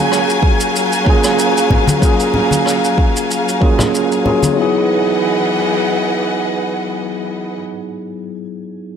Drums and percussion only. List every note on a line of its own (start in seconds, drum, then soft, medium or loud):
0.12 cross-stick medium
0.12 shaker medium
0.30 shaker soft
0.43 kick loud
0.60 shaker medium
0.76 shaker medium
0.92 shaker soft
1.06 kick loud
1.24 cross-stick medium
1.24 shaker medium
1.39 shaker medium
1.57 shaker soft
1.70 kick medium
1.70 low conga medium
1.88 high conga medium
1.88 shaker medium
2.02 kick loud
2.02 shaker medium
2.20 shaker soft
2.34 low conga medium
2.51 high conga medium
2.51 shaker medium
2.66 cross-stick medium
2.66 shaker medium
2.85 shaker soft
2.98 kick medium
3.17 shaker medium
3.31 shaker medium
3.49 shaker soft
3.62 kick loud
3.79 cross-stick medium
3.79 low conga medium
3.79 shaker medium
3.95 shaker medium
4.12 shaker soft
4.26 low conga medium
4.43 high conga medium
4.43 shaker medium